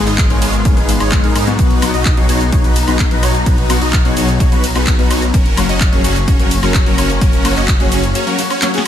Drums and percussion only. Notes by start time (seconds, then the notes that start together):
0.07 clap, closed hi-hat, cabasa
0.18 kick, clap, closed hi-hat, ride, cabasa
0.30 closed hi-hat
0.42 open hi-hat, ride, cabasa
0.53 closed hi-hat, cabasa
0.65 kick, closed hi-hat, ride, cabasa
0.77 closed hi-hat, cabasa
0.89 open hi-hat, ride, cabasa
1.00 closed hi-hat, cabasa, high woodblock
1.12 kick, clap, closed hi-hat, ride, cabasa
1.24 closed hi-hat
1.36 open hi-hat, ride, cabasa, high woodblock
1.47 closed hi-hat, cabasa
1.59 kick, closed hi-hat, ride, cabasa
1.71 closed hi-hat
1.82 open hi-hat, ride, cabasa, high woodblock
1.94 closed hi-hat, cabasa
2.05 kick, clap, closed hi-hat, ride, cabasa
2.17 closed hi-hat
2.29 open hi-hat, ride, cabasa
2.41 closed hi-hat, cabasa
2.52 kick, closed hi-hat, ride, cabasa
2.64 closed hi-hat, cabasa
2.76 open hi-hat, ride, cabasa
2.88 closed hi-hat, cabasa, high woodblock
2.99 kick, clap, closed hi-hat, ride, cabasa
3.11 closed hi-hat
3.23 open hi-hat, ride, cabasa, high woodblock
3.35 closed hi-hat, cabasa
3.46 kick, closed hi-hat, ride, cabasa
3.58 closed hi-hat
3.70 open hi-hat, ride, cabasa, high woodblock
3.82 closed hi-hat, cabasa
3.93 kick, clap, closed hi-hat, ride, cabasa
4.05 closed hi-hat
4.17 open hi-hat, ride, cabasa
4.29 closed hi-hat, cabasa
4.40 kick, closed hi-hat, ride, cabasa
4.52 closed hi-hat, cabasa
4.64 open hi-hat, ride, cabasa
4.76 closed hi-hat, cabasa, high woodblock
4.87 kick, clap, closed hi-hat, ride, cabasa
4.99 closed hi-hat
5.11 open hi-hat, ride, cabasa, high woodblock
5.22 closed hi-hat, cabasa
5.34 kick, closed hi-hat, ride, cabasa
5.46 closed hi-hat
5.57 open hi-hat, ride, cabasa, high woodblock
5.69 closed hi-hat, cabasa
5.81 kick, clap, closed hi-hat, ride, cabasa
5.93 closed hi-hat
6.04 open hi-hat, ride, cabasa
6.16 closed hi-hat, cabasa
6.28 kick, closed hi-hat, ride, cabasa
6.40 closed hi-hat, cabasa
6.51 open hi-hat, ride, cabasa
6.63 closed hi-hat, cabasa, high woodblock
6.74 kick, clap, closed hi-hat, ride, cabasa
6.86 closed hi-hat
6.98 open hi-hat, ride, cabasa, high woodblock
7.10 closed hi-hat, cabasa
7.21 kick, closed hi-hat, ride, cabasa
7.33 closed hi-hat, cabasa
7.45 open hi-hat, ride, cabasa, high woodblock
7.56 clap, closed hi-hat, cabasa
7.68 kick, clap, closed hi-hat, ride, cabasa
7.80 closed hi-hat
7.92 open hi-hat, ride, cabasa
8.04 closed hi-hat, cabasa
8.15 closed hi-hat, ride, cabasa
8.27 closed hi-hat, cabasa
8.39 open hi-hat, ride, cabasa
8.50 closed hi-hat, cabasa, high woodblock
8.62 snare, clap, closed hi-hat, ride, cabasa
8.74 snare, closed hi-hat, cabasa